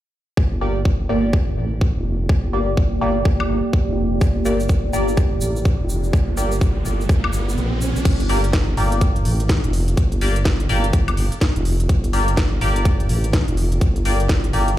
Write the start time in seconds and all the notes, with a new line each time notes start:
0.37 G1 A#3 G4 D5, kick
0.61 A#3 G4 D5
0.85 G1, kick
1.09 G1 A#3 G4 D5
1.33 kick
1.57 A1
1.81 kick
1.96 F1
2.29 G1, kick
2.53 A#3 G4 D5
2.77 G1, kick
3.01 G1 A#3 G4 D5
3.25 G1, kick
3.40 high woodblock
3.73 kick
3.88 F1
4.21 G1, kick, riser, shaker
4.45 A#3 G4 D5, shaker
4.60 shaker
4.69 G1, kick, shaker
4.93 G1 A#3 G4 D5, shaker
5.08 shaker
5.17 kick, shaker
5.41 A1, shaker
5.56 shaker
5.65 kick, shaker
5.80 F1
5.89 shaker
6.04 shaker
6.13 G1, kick, shaker
6.37 A#3 G4 D5, shaker
6.52 shaker
6.61 G1, kick, shaker
6.85 G1, shaker
7.01 shaker
7.09 G1, kick, shaker
7.24 high woodblock
7.33 shaker
7.49 shaker
7.57 A#1, shaker
7.81 shaker
7.96 A#1, shaker
8.05 G1, kick, closed hi-hat, crash
8.20 closed hi-hat
8.29 A#3 G4 D5, open hi-hat
8.44 closed hi-hat
8.53 G1, kick, snare, closed hi-hat
8.77 G1 A#3 G4 D5, open hi-hat
8.92 closed hi-hat
9.01 kick, closed hi-hat
9.16 closed hi-hat
9.25 A1, open hi-hat
9.40 closed hi-hat
9.49 kick, snare, closed hi-hat
9.64 F1, closed hi-hat
9.73 open hi-hat
9.88 closed hi-hat
9.97 G1, kick, closed hi-hat
10.12 closed hi-hat
10.21 A#3 G4 D5, open hi-hat
10.36 closed hi-hat
10.45 G1, kick, snare, closed hi-hat
10.60 closed hi-hat
10.69 G1 A#3 G4 D5, open hi-hat
10.84 closed hi-hat
10.93 G1, kick, closed hi-hat
11.08 closed hi-hat, high woodblock
11.17 open hi-hat
11.32 closed hi-hat
11.41 kick, snare, closed hi-hat
11.56 F1, closed hi-hat
11.65 open hi-hat
11.80 closed hi-hat
11.89 G1, kick, closed hi-hat
12.04 closed hi-hat
12.13 A#3 G4 D5, open hi-hat
12.28 closed hi-hat
12.37 G1, kick, snare, closed hi-hat
12.61 G1 A#3 G4 D5, open hi-hat
12.76 closed hi-hat
12.85 kick, closed hi-hat
13.00 closed hi-hat
13.09 A1, open hi-hat
13.24 closed hi-hat
13.33 kick, snare, closed hi-hat
13.48 F1, closed hi-hat
13.57 open hi-hat
13.72 closed hi-hat
13.81 G1, kick, closed hi-hat
13.96 closed hi-hat
14.05 A#3 G4 D5, open hi-hat
14.20 closed hi-hat
14.29 G1, kick, snare, closed hi-hat
14.44 closed hi-hat
14.53 G1 A#3 G4 D5, open hi-hat
14.68 closed hi-hat